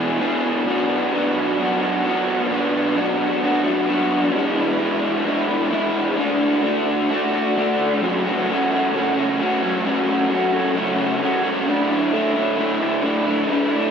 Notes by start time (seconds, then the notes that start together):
Already playing: E2 B2 B3 D4 G#4
0.00 E3
0.19 E3 B3 D4 G#4
0.65 B2 F#3 B3 D4 F#4
1.11 F#3 B3 D4 F#4
1.58 B2 F#3 B3 D4 F#4
1.81 B3 D4 F#4
2.03 F#3 B3 D4 F#4
2.50 B2 F#3 B3 D4 F#4
2.95 F#3 B3 D4 F#4
3.41 B2 F#3 B3 D4 F#4
3.64 B3 D4 F#4
3.87 F#3 B3 D4 F#4
4.33 E2 B2 E3 G#3 D4 E4
4.79 E3 G#3 D4 E4
5.24 E2 B2 E3 G#3 D4
5.28 E4
5.48 E3 G#3 D4 E4
5.70 E3 G#3 D4 E4
6.16 D3 A3 D4 F#4
6.62 D3 A3 D4 F#4
7.09 D3 A3 D4 F#4
7.32 A3 D4 F#4
7.56 D3 A3 D4 F#4
8.01 F#2 C#3 F#3 A3 C#4 F#4
8.24 F#3 A3 C#4 F#4
8.47 F#3 A3 C#4 F#4
8.71 F#3 A3 C#4 F#4
8.93 F#2 C#3 F#3 A3 C#4 F#4
9.17 F#3 A3 C#4 F#4
9.40 F#3 A3 C#4 F#4
9.62 F#3 A3 C#4 F#4
9.84 F#2 C#3 F#3 A3 C#4 F#4
10.07 F#3 A3 C#4 F#4
10.30 F#3 A3 C#4 F#4
10.53 F#3 A3 C#4 F#4
10.75 F#2 C#3 F#3 A3 C#4 F#4
10.98 F#3 A3 C#4 F#4
11.20 F#3 A3 C#4 F#4
11.43 F#3 A3 C#4 F#4
11.66 D3 A3 D4 E4
11.89 A3 D4 E4
12.11 D3 A3 D4 E4
12.33 A3 D4 E4
12.57 D3 A3 D4 E4
12.80 A3 D4 E4
13.02 D3 A3 D4 E4
13.25 A3 D4 E4
13.49 D3 A3 D4 E4
13.72 A3 D4 E4